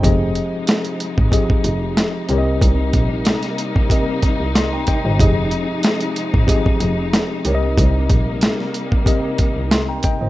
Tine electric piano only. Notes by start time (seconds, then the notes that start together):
Already playing: C5
0.02 F3 C4 G4 G#4 D#5
1.31 F3 C4 G4 G#4 D#5
2.29 C3 C4 G4 A#4 C#5
2.38 D#5
3.89 C3 C4 G4 A#4 D#5
4.55 C6
4.73 G5 A#5
4.88 D#5 G5
5.05 C5 D#5
5.18 F3 C4 G4 G#4 D#5
6.46 F3 C4 G4 G#4 D#5
7.45 C3 C4 G4 A#4 C#5
7.55 D#5
9.05 C3 C4 G4 A#4 D#5
9.71 C6
9.89 G5 A#5
10.04 D#5 G5
10.21 C5 D#5